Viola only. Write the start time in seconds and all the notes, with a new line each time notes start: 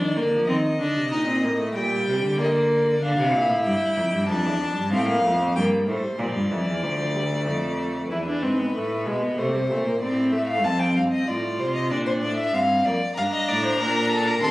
Already playing: D4
0.16 A#3
0.48 C4
0.80 D4
1.12 D#4
1.28 C4
1.44 A#3
1.60 A3
1.76 G3
2.38 A#3
3.02 D4
3.33 E4
4.28 D4
4.92 C4
5.08 A#3
5.24 A3
5.40 C4
5.55 A#3
5.87 A3
6.03 G3
6.19 F3
6.51 E3
6.82 F3
7.15 G3
7.31 A3
8.11 E4
8.27 D4
8.42 C4
8.59 B3
8.75 A3
9.06 G#3
9.22 B3
9.38 A3
9.54 G3
9.70 A3
9.85 A#3
10.01 C4
10.32 A3
10.64 C4
11.28 F4
11.91 D4
12.54 C4
12.86 A#3
13.17 D4
14.44 C4